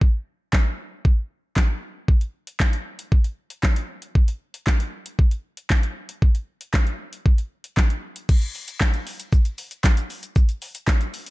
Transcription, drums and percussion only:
0.01 kick
0.53 kick, snare, clap
1.05 kick
1.56 kick, snare, clap
2.08 kick
2.21 closed hi-hat
2.47 closed hi-hat
2.60 kick, snare, clap
2.73 closed hi-hat
2.99 closed hi-hat
3.12 kick
3.24 closed hi-hat
3.50 closed hi-hat
3.63 kick, snare, clap
3.76 closed hi-hat
4.02 closed hi-hat
4.15 kick
4.28 closed hi-hat
4.54 closed hi-hat
4.67 kick, snare, clap
4.80 closed hi-hat
5.06 closed hi-hat
5.19 kick
5.31 closed hi-hat
5.57 closed hi-hat
5.70 kick, snare, clap
5.83 closed hi-hat
6.09 closed hi-hat
6.22 kick
6.35 closed hi-hat
6.61 closed hi-hat
6.74 kick, snare, clap
6.87 closed hi-hat
7.13 closed hi-hat
7.26 kick
7.38 closed hi-hat
7.64 closed hi-hat
7.77 kick, snare, clap
7.90 closed hi-hat
8.16 closed hi-hat
8.29 kick, crash, shaker
8.42 closed hi-hat, shaker
8.55 open hi-hat, shaker
8.68 closed hi-hat, shaker
8.81 kick, snare, clap, shaker
8.94 closed hi-hat, shaker
9.07 open hi-hat, shaker
9.20 closed hi-hat, shaker
9.33 kick, shaker
9.45 closed hi-hat, shaker
9.58 open hi-hat, shaker
9.71 closed hi-hat, shaker
9.84 kick, snare, clap, shaker
9.97 closed hi-hat, shaker
10.10 open hi-hat, shaker
10.23 closed hi-hat, shaker
10.36 kick, shaker
10.49 closed hi-hat, shaker
10.62 open hi-hat, shaker
10.75 closed hi-hat, shaker
10.88 kick, snare, clap, shaker
11.01 closed hi-hat, shaker
11.14 open hi-hat, shaker
11.26 closed hi-hat, shaker

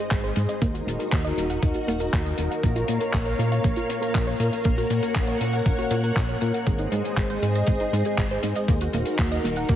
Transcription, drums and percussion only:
0.11 kick, clap, closed hi-hat
0.24 closed hi-hat
0.36 closed hi-hat
0.49 closed hi-hat
0.62 kick, closed hi-hat
0.75 closed hi-hat
0.88 closed hi-hat
1.00 closed hi-hat
1.12 kick, clap, closed hi-hat
1.25 closed hi-hat
1.38 closed hi-hat
1.50 closed hi-hat
1.63 kick, closed hi-hat
1.74 closed hi-hat
1.88 closed hi-hat
2.00 closed hi-hat
2.13 kick, clap, closed hi-hat
2.26 closed hi-hat
2.38 closed hi-hat
2.51 closed hi-hat
2.63 kick, closed hi-hat
2.76 closed hi-hat
2.88 closed hi-hat
3.01 closed hi-hat
3.13 kick, clap, closed hi-hat
3.25 closed hi-hat
3.39 closed hi-hat
3.52 closed hi-hat
3.64 kick, closed hi-hat
3.76 closed hi-hat
3.90 closed hi-hat
4.03 closed hi-hat
4.15 kick, clap, closed hi-hat
4.27 closed hi-hat
4.40 closed hi-hat
4.53 closed hi-hat
4.64 kick, closed hi-hat
4.78 closed hi-hat
4.90 closed hi-hat
5.03 closed hi-hat
5.15 kick, clap, closed hi-hat
5.27 closed hi-hat
5.41 closed hi-hat
5.53 closed hi-hat
5.66 kick, closed hi-hat
5.78 closed hi-hat
5.91 closed hi-hat
6.04 closed hi-hat
6.16 kick, clap, closed hi-hat
6.29 closed hi-hat
6.41 closed hi-hat
6.54 closed hi-hat
6.67 kick, closed hi-hat
6.78 closed hi-hat
6.92 closed hi-hat
7.05 closed hi-hat
7.17 kick, clap, closed hi-hat
7.30 closed hi-hat
7.43 closed hi-hat
7.55 closed hi-hat
7.67 kick, closed hi-hat
7.80 closed hi-hat
7.93 closed hi-hat
8.05 closed hi-hat
8.18 kick, clap, closed hi-hat
8.31 closed hi-hat
8.43 closed hi-hat
8.55 closed hi-hat
8.68 kick, closed hi-hat
8.81 closed hi-hat
8.93 closed hi-hat
9.05 closed hi-hat
9.19 kick, clap, closed hi-hat
9.32 closed hi-hat
9.45 closed hi-hat
9.56 closed hi-hat
9.69 kick, closed hi-hat

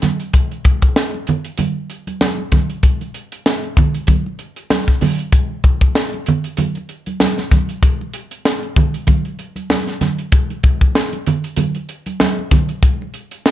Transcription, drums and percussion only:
0.02 snare, closed hi-hat, high conga, low conga
0.20 closed hi-hat
0.33 kick, closed hi-hat, muted conga
0.51 closed hi-hat
0.65 kick, closed hi-hat
0.82 kick, closed hi-hat
0.96 snare
1.14 muted conga
1.27 closed hi-hat, low conga
1.45 closed hi-hat
1.58 closed hi-hat, muted conga, high conga, low conga
1.90 closed hi-hat
2.07 closed hi-hat, high conga
2.21 snare, muted conga, high conga
2.38 muted conga
2.52 kick, snare, closed hi-hat, high conga, low conga
2.70 closed hi-hat
2.83 kick, closed hi-hat
3.01 closed hi-hat, muted conga
3.14 closed hi-hat
3.32 closed hi-hat
3.46 snare, muted conga
3.64 closed hi-hat
3.77 kick, closed hi-hat, low conga
3.94 closed hi-hat
4.07 kick, closed hi-hat, high conga, low conga
4.26 muted conga
4.39 closed hi-hat
4.56 closed hi-hat
4.70 snare, high conga
4.88 kick, snare, muted conga
5.01 snare, open hi-hat, high conga, low conga
5.19 closed hi-hat
5.32 kick, closed hi-hat
5.64 kick, closed hi-hat
5.81 kick, closed hi-hat
5.95 snare
6.13 closed hi-hat, muted conga
6.26 closed hi-hat, low conga
6.44 closed hi-hat
6.57 closed hi-hat, high conga, low conga
6.75 closed hi-hat, muted conga
6.89 closed hi-hat
7.06 closed hi-hat, high conga
7.20 snare, high conga
7.38 snare, closed hi-hat, muted conga
7.51 kick, snare, closed hi-hat, high conga, low conga
7.69 closed hi-hat
7.83 kick, closed hi-hat, muted conga
8.01 muted conga
8.14 closed hi-hat
8.31 closed hi-hat
8.45 snare
8.63 closed hi-hat
8.76 kick, closed hi-hat, low conga
8.94 closed hi-hat
9.07 kick, closed hi-hat, high conga, low conga
9.25 closed hi-hat
9.39 closed hi-hat
9.56 closed hi-hat, high conga
9.70 snare, muted conga, high conga
9.87 snare, closed hi-hat
10.01 snare, closed hi-hat, high conga, low conga
10.19 closed hi-hat
10.32 kick, closed hi-hat, muted conga
10.50 closed hi-hat, muted conga
10.63 kick, closed hi-hat
10.81 kick, closed hi-hat
10.95 snare, muted conga
11.12 closed hi-hat, muted conga
11.26 closed hi-hat, low conga
11.44 closed hi-hat
11.56 closed hi-hat, muted conga, high conga, low conga
11.75 closed hi-hat, muted conga
11.89 closed hi-hat
12.06 closed hi-hat, high conga
12.20 snare, muted conga, high conga
12.39 muted conga
12.51 kick, snare, closed hi-hat, high conga, low conga
12.69 closed hi-hat
12.83 kick, closed hi-hat
13.02 muted conga
13.14 closed hi-hat
13.31 closed hi-hat
13.46 snare, muted conga

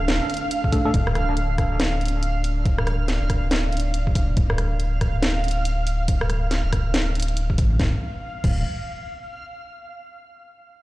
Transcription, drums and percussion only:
0.08 snare, closed hi-hat
0.30 closed hi-hat
0.34 closed hi-hat
0.37 closed hi-hat
0.51 closed hi-hat
0.64 kick
0.72 kick, open hi-hat
0.94 kick, closed hi-hat
1.07 cross-stick
1.15 cross-stick, closed hi-hat
1.37 closed hi-hat
1.58 kick, cross-stick, closed hi-hat
1.80 snare, closed hi-hat
2.01 closed hi-hat
2.05 closed hi-hat
2.08 closed hi-hat
2.23 closed hi-hat
2.44 open hi-hat
2.65 kick, closed hi-hat
2.78 cross-stick
2.87 cross-stick, closed hi-hat
3.08 snare, closed hi-hat
3.30 kick, cross-stick, closed hi-hat
3.51 snare, closed hi-hat
3.72 closed hi-hat
3.77 closed hi-hat
3.80 closed hi-hat
3.94 closed hi-hat
4.07 kick
4.15 kick, open hi-hat
4.37 kick, closed hi-hat
4.50 cross-stick
4.58 cross-stick, closed hi-hat
4.80 closed hi-hat
5.01 kick, cross-stick, closed hi-hat
5.23 snare, closed hi-hat
5.44 closed hi-hat
5.48 closed hi-hat
5.51 closed hi-hat
5.65 closed hi-hat
5.87 open hi-hat
6.08 kick, closed hi-hat
6.21 cross-stick
6.30 cross-stick, closed hi-hat
6.51 snare, closed hi-hat
6.73 kick, cross-stick, open hi-hat
6.94 snare, closed hi-hat
7.15 closed hi-hat
7.20 closed hi-hat
7.22 closed hi-hat
7.28 closed hi-hat
7.37 closed hi-hat
7.50 kick
7.58 kick, open hi-hat
7.80 kick, snare
8.44 kick, crash

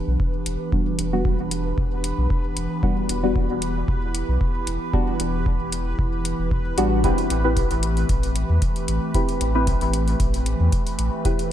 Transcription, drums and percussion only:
0.20 kick
0.46 closed hi-hat
0.72 kick
0.99 closed hi-hat
1.25 kick
1.51 closed hi-hat
1.78 kick
2.04 closed hi-hat
2.30 kick
2.57 closed hi-hat
2.83 kick
3.09 closed hi-hat
3.36 kick
3.62 closed hi-hat
3.88 kick
4.15 closed hi-hat
4.41 kick
4.67 closed hi-hat
4.94 kick
5.20 closed hi-hat
5.46 kick
5.72 closed hi-hat
5.99 kick
6.25 closed hi-hat
6.51 kick
6.78 closed hi-hat
7.04 kick, closed hi-hat
7.18 closed hi-hat
7.30 closed hi-hat
7.57 kick, closed hi-hat
7.71 closed hi-hat
7.83 closed hi-hat
7.97 closed hi-hat
8.09 kick, closed hi-hat
8.23 closed hi-hat
8.36 closed hi-hat
8.62 kick, closed hi-hat
8.76 closed hi-hat
8.88 closed hi-hat
9.14 kick, closed hi-hat
9.29 closed hi-hat
9.41 closed hi-hat
9.67 kick, closed hi-hat
9.81 closed hi-hat
9.94 closed hi-hat
10.08 closed hi-hat
10.20 kick, closed hi-hat
10.34 closed hi-hat
10.46 closed hi-hat
10.72 kick, closed hi-hat
10.87 closed hi-hat
10.99 closed hi-hat
11.25 kick, closed hi-hat
11.39 closed hi-hat

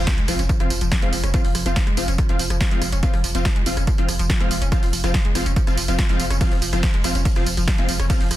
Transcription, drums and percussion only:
0.07 kick, snare, closed hi-hat, tambourine
0.18 closed hi-hat
0.28 cross-stick, open hi-hat, tambourine
0.39 closed hi-hat, tambourine
0.49 kick, closed hi-hat, tambourine
0.60 cross-stick, closed hi-hat
0.70 open hi-hat, tambourine
0.81 closed hi-hat, tambourine
0.92 kick, cross-stick, snare, closed hi-hat, tambourine
1.02 closed hi-hat
1.13 open hi-hat, tambourine
1.24 cross-stick, closed hi-hat, tambourine
1.34 kick, closed hi-hat, tambourine
1.45 open hi-hat
1.55 cross-stick, open hi-hat, tambourine
1.66 closed hi-hat, tambourine
1.76 kick, snare, closed hi-hat, tambourine
1.87 cross-stick, closed hi-hat
1.97 open hi-hat, tambourine
2.08 closed hi-hat, tambourine
2.18 kick, cross-stick, closed hi-hat, tambourine
2.29 closed hi-hat
2.39 open hi-hat, tambourine
2.50 cross-stick, closed hi-hat, tambourine
2.61 kick, snare, closed hi-hat, tambourine
2.71 closed hi-hat
2.82 cross-stick, open hi-hat, tambourine
2.92 closed hi-hat, tambourine
3.03 kick, closed hi-hat, tambourine
3.14 cross-stick, open hi-hat
3.24 open hi-hat, tambourine
3.35 closed hi-hat, tambourine
3.45 kick, cross-stick, snare, closed hi-hat, tambourine
3.56 closed hi-hat
3.66 open hi-hat, tambourine
3.77 cross-stick, closed hi-hat, tambourine
3.87 kick, closed hi-hat, tambourine
3.98 closed hi-hat
4.09 cross-stick, open hi-hat, tambourine
4.19 closed hi-hat, tambourine
4.30 kick, snare, closed hi-hat, tambourine
4.41 cross-stick, closed hi-hat
4.51 open hi-hat, tambourine
4.62 closed hi-hat, tambourine
4.72 kick, cross-stick, closed hi-hat, tambourine
4.83 open hi-hat, tambourine
4.93 open hi-hat, tambourine
5.04 cross-stick, closed hi-hat, tambourine
5.14 kick, snare, closed hi-hat, tambourine
5.25 closed hi-hat
5.35 cross-stick, open hi-hat, tambourine
5.46 closed hi-hat, tambourine
5.56 kick, closed hi-hat, tambourine
5.67 cross-stick, closed hi-hat, tambourine
5.77 open hi-hat, tambourine
5.88 closed hi-hat, tambourine
5.99 kick, cross-stick, snare, closed hi-hat
6.09 closed hi-hat
6.20 open hi-hat, tambourine
6.30 cross-stick, closed hi-hat, tambourine
6.41 kick, cross-stick, closed hi-hat, ride, tambourine
6.52 open hi-hat
6.62 open hi-hat, tambourine
6.73 cross-stick, closed hi-hat, tambourine
6.83 kick, snare, closed hi-hat, ride, tambourine
6.94 closed hi-hat
7.04 cross-stick, open hi-hat, tambourine
7.15 closed hi-hat, tambourine
7.25 kick, closed hi-hat, ride, tambourine
7.36 cross-stick, closed hi-hat
7.47 open hi-hat, tambourine
7.57 closed hi-hat, tambourine
7.68 kick, cross-stick, snare, closed hi-hat, ride
7.78 closed hi-hat
7.89 open hi-hat, tambourine
8.00 cross-stick, closed hi-hat, tambourine
8.10 kick, closed hi-hat, ride, tambourine
8.21 open hi-hat
8.31 cross-stick, open hi-hat, tambourine

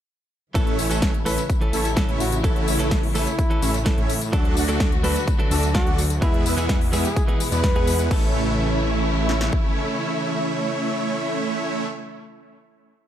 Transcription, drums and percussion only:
0.55 kick, closed hi-hat, tambourine
0.67 closed hi-hat
0.79 open hi-hat, tambourine
0.91 closed hi-hat, tambourine
1.02 kick, snare, closed hi-hat
1.14 closed hi-hat
1.26 open hi-hat, tambourine
1.38 closed hi-hat, tambourine
1.50 kick, closed hi-hat, tambourine
1.61 closed hi-hat
1.73 open hi-hat, tambourine
1.85 closed hi-hat, tambourine
1.97 kick, snare, closed hi-hat, tambourine
2.09 closed hi-hat
2.20 open hi-hat, tambourine
2.32 closed hi-hat, tambourine
2.44 kick, closed hi-hat, tambourine
2.56 closed hi-hat
2.68 open hi-hat, tambourine
2.80 closed hi-hat, tambourine
2.91 kick, snare, closed hi-hat, tambourine
3.03 open hi-hat
3.15 open hi-hat, tambourine
3.27 closed hi-hat, tambourine
3.39 kick, closed hi-hat, tambourine
3.51 closed hi-hat
3.62 open hi-hat, tambourine
3.74 closed hi-hat, tambourine
3.86 kick, snare, closed hi-hat, tambourine
3.98 closed hi-hat
4.09 open hi-hat, tambourine
4.21 closed hi-hat, tambourine
4.33 kick, closed hi-hat, tambourine
4.45 closed hi-hat
4.57 open hi-hat, tambourine
4.69 closed hi-hat, tambourine
4.80 kick, snare, closed hi-hat, tambourine
4.92 closed hi-hat
5.04 open hi-hat, tambourine
5.16 closed hi-hat, tambourine
5.28 kick, closed hi-hat, tambourine
5.39 closed hi-hat
5.51 open hi-hat, tambourine
5.63 closed hi-hat, tambourine
5.75 kick, snare, closed hi-hat, tambourine
5.87 closed hi-hat
5.98 open hi-hat, tambourine
6.10 closed hi-hat, tambourine
6.22 kick, closed hi-hat, tambourine
6.34 closed hi-hat
6.46 open hi-hat, tambourine
6.58 closed hi-hat, tambourine
6.69 kick, snare, closed hi-hat, tambourine
6.81 open hi-hat
6.93 open hi-hat, tambourine
7.05 closed hi-hat, tambourine
7.16 kick, closed hi-hat, tambourine
7.28 closed hi-hat
7.40 open hi-hat, tambourine
7.52 closed hi-hat, tambourine
7.64 kick, snare, closed hi-hat, tambourine
7.76 closed hi-hat
7.87 open hi-hat, tambourine
7.99 closed hi-hat, tambourine
8.11 kick, crash
9.29 snare
9.41 snare
9.53 kick

